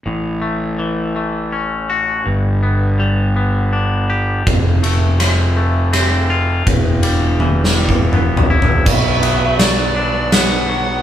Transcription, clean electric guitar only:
\new Staff \with { instrumentName = "Clean electric guitar" } { \time 3/4 \key a \mixolydian \tempo 4 = 82 a,8 a8 e8 a8 cis'8 fis'8 | g,8 b8 g8 b8 d'8 g'8 | f,8 a8 f8 a8 c'8 f'8 | e,8 g8 e8 g8 b8 e'8 |
b,8 b8 fis8 d'8 b8 fis8 | }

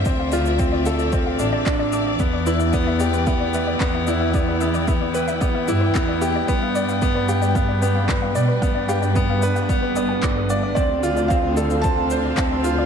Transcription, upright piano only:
\new Staff \with { instrumentName = "Upright piano" } { \time 4/4 \key d \dorian \tempo 4 = 112 c'8 f'8 c'8 a'8 c'8 d'8 d'8 d'8 | b8 e'8 b8 g'8 b8 b'8 b8 e'8 | b8 b8 b8 b'8 b8 e'8 b8 g'8 | b8 d''8 b8 g'8 b8 b8 b8 d''8 |
b8 g'8 b8 b'8 b8 b8 d''8 d''8 | c'8 f'8 c'8 a'8 c'8 c''8 c'8 f'8 | }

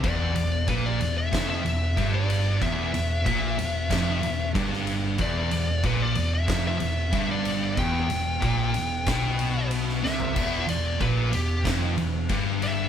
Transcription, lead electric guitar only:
\new Staff \with { instrumentName = "Lead electric guitar" } { \time 4/4 \key e \phrygian \tempo 4 = 93 d''4 b'16 d''8 e''8 e''4 d''8. | e''2. r4 | d''4 b'16 d''8 e''8 e''4 d''8. | g''2. r8 e''8~ |
e''8 d''8 b'8 g'8 r4. e''8 | }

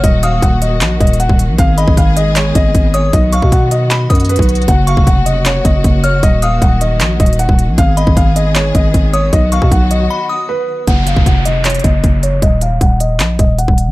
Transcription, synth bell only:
\new Staff \with { instrumentName = "Synth bell" } { \time 4/4 \key ees \minor \tempo 4 = 155 r8 ees'''4. r2 | r8 ces'''2. ees'''8 | r8 des'''4. b''8 dis'''4. | r8 des'''2. f'''8 |
r8 ees'''4. r2 | r8 ces'''2. ees'''8 | r8 des'''4. b''8 dis'''4. | r1 |
r1 | }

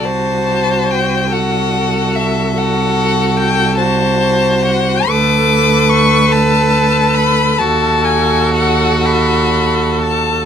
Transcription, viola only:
\new Staff \with { instrumentName = "Viola" } { \time 12/8 \key a \mixolydian \tempo 4. = 47 fis'4. fis'4. fis'4. fis'4. | \key b \dorian a'4. a'4. a'4. a'4. | }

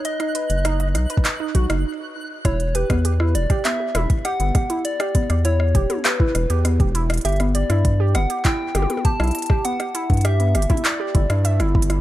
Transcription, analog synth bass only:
\new Staff \with { instrumentName = "Analog synth bass" } { \clef bass \time 4/4 \key e \dorian \tempo 4 = 100 r8. fis,,8. b,,16 r8. b,,16 fis,,16 r4 | e,,8. e,8. e,,16 r8. e,,16 r8 g,,16 r8 | r8. e,8. e,,16 r8. e,,16 e,8 e,,8. | g,,8. g,8. g,,16 r8. g,,16 r8 b,,16 r8 |
r8. g,8. g,,16 r8. g,,16 g,8 g,,8. | }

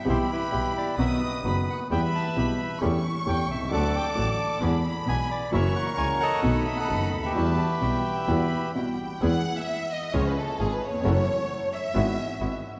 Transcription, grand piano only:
\new Staff \with { instrumentName = "Grand piano" } { \clef bass \time 4/4 \key e \minor \tempo 4 = 132 <b,, b, e g b g'>8 r8 <b,, b, e g b g'>8 r8 <b,, b, dis fis b fis'>8 r8 <fis,, fis, dis fis b fis'>8 r8 | <e, e g b g'>8 r8 <b,, b, e g b g'>8 r8 <e, e a cis' g'>8 r8 <e, e a cis' g'>8 r32 b,,32 c,32 cis,32 | <d, d fis a d' a'>8 r8 <a,, a, fis a d' a'>8 r8 <e, e gis b gis'>8 r8 <b,, b, e gis b gis'>8 r8 | <fis, e fis ais cis' fis'>8 r8 <cis, cis e ais cis' fis'>8 r8 <b,, b, dis a b fis'>8 r8 <fis,, fis, dis a b fis'>8 r32 cis,32 d,32 dis,32 |
<e, e g b fis'>8 r8 <b,, b, e g b fis'>8 r8 <e, e g b fis'>8 r8 <b,, b, e g b fis'>8 r8 | \key e \major <e, e gis b gis'>8 r4. <cis, cis eis gis cis' gis'>8 r8 <gis,, gis,>8 r32 dis,32 e,32 eis,32 | <fis, e fis a cis' fis'>8 r4. <gis,, gis, e gis b fis'>8 r8 <gis,, gis,>8 r8 | }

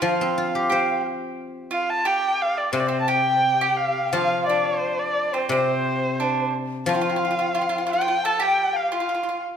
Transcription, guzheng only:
\new Staff \with { instrumentName = "Guzheng" } { \clef bass \time 2/4 \tempo 4 = 88 f16 c'16 f'16 g'16 c''4~ | c''4 r4 | c2 | f2 |
c2 | f2~ | f4 r4 | }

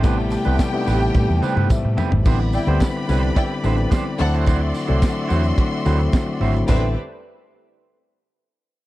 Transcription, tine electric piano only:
\new Staff \with { instrumentName = "Tine electric piano" } { \time 4/4 \key a \dorian \tempo 4 = 108 <c g a b e'>8 r16 <c g a b e'>16 r16 <c g a b dis' e'>4~ <c g a b dis' e'>16 c''8 e''4 | <d g b c' e'>8 r16 <d g b c' e'>8 r16 <d g b c' e'>8. r16 <d g b c' e'>8. r16 <d fis a c' e'>8~ | <d fis a c' e'>8 r16 <d fis a c' d'>8 r16 <d fis a c' e'>8. r16 <d fis a c' e'>8. r16 <d fis a c' e'>16 r16 | <d g b c' e'>8 r2. r8 | }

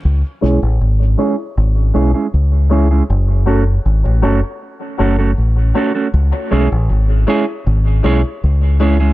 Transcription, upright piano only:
\new Staff \with { instrumentName = "Upright piano" } { \time 4/4 \key cis \minor \tempo 4 = 79 r8 <e' gis' cis''>16 r8 <gis' cis''>16 <e' gis' cis''>16 r8. <e' gis' cis''>16 r8. <e' gis' cis''>16 r16 | r8 <fis' a' cis''>16 r8 <a' cis''>16 <fis' a' cis''>16 r8. <fis' a' cis''>16 r8. <fis' a' cis''>16 r16 | r8 <e' gis' cis''>16 r8 <gis' cis''>16 <e' gis' cis''>16 r8. <e' gis' cis''>16 r8. <e' gis' cis''>16 r16 | }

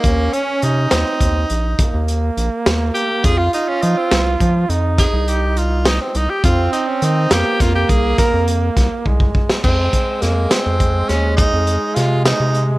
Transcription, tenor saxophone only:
\new Staff \with { instrumentName = "Tenor saxophone" } { \time 11/8 \key f \minor \tempo 4 = 103 bes8 des'8 ees'2~ ees'8 r4. g'8 | aes'16 f'16 ees'16 des'16 ees'16 c'8 r4 r16 aes'8 g'8 f'8 ees'16 c'16 ees'16 g'16 | f'8 ees'16 des'16 ees'8 g'8 f'16 g'16 aes'8 bes'8 r2 | c'4 bes8 c'4 des'8 ees'4 f'8 ees'8. r16 | }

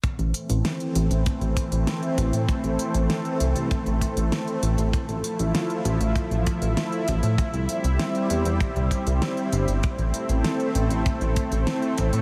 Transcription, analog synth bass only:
\new Staff \with { instrumentName = "Analog synth bass" } { \clef bass \time 4/4 \key a \minor \tempo 4 = 98 r16 a,,16 r16 a,,16 r8 a,,16 a,,16 r16 a,,16 r16 a,,16 r8 a,,16 a,16 | r16 a,,16 r16 a,,16 r8 c,16 c,16 r16 a,,16 r16 a,,16 r8 a,,16 a,,16 | r16 a,,16 r16 a,,16 r8 a,,16 a,,16 r16 a,,16 r16 a,,16 r8 a,,16 a,16 | r16 c,16 r16 c,16 r8 e,16 e,16 r16 c,16 r16 c,16 r8 g,,16 g,,16 |
r16 a,,16 r16 a,,16 r8 a,,16 a,,16 r16 a,,16 r16 a,,16 r8 a,,16 a,16 | }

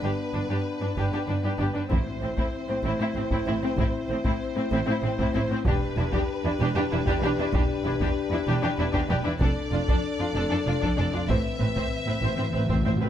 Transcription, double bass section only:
\new Staff \with { instrumentName = "Double bass section" } { \clef bass \time 6/8 \key a \minor \tempo 4. = 64 g,,16 r16 g,,16 r8. g,,16 r16 g,,16 r16 g,,16 r16 | a,,16 r16 a,,16 r8. a,,16 r16 a,,16 r16 a,,16 r16 | a,,16 r16 a,,16 r8. a,,16 r16 a,,16 r16 a,,16 r16 | e,,16 r16 e,,16 r8. e,,16 r16 e,,16 r16 e,,16 r16 |
e,,16 r16 e,,16 r8. e,,16 r16 e,,16 r16 e,,16 r16 | f,,16 r16 f,,16 r8. f,,16 r16 f,,16 r16 f,,16 r16 | a,,16 r16 a,,16 r8. a,,16 r16 a,,16 r16 a,,16 r16 | }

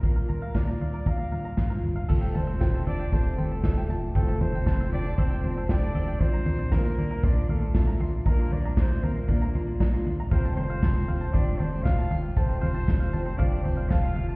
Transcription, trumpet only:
\new Staff \with { instrumentName = "Trumpet" } { \time 4/4 \key f \major \tempo 4 = 117 bes'4 d''4 f''4. r8 | a'8 c''4 d''8 c''8 a'4 r8 | a'8 c''4 d''8 c''8 c''8 d''4 | c''4 bes'4 d''8 a'4 r8 |
bes'8 d''8 c''8 bes'4. r4 | c''8 c''4. d''8 c''8 f''8. r16 | c''8 c''4. d''8 c''8 f''8. r16 | }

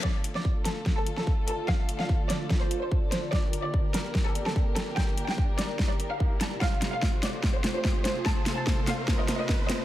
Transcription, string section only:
\new Staff \with { instrumentName = "String section" } { \time 4/4 \key d \minor \tempo 4 = 146 << { <a f' a'>1~ | <a f' a'>1 | <bes g' bes'>1~ | <bes g' bes'>1 |
<a f' c''>1~ | <a f' c''>1 | } \\ { d1~ | d1~ | d1~ | d1 |
c1~ | c1 | } >> }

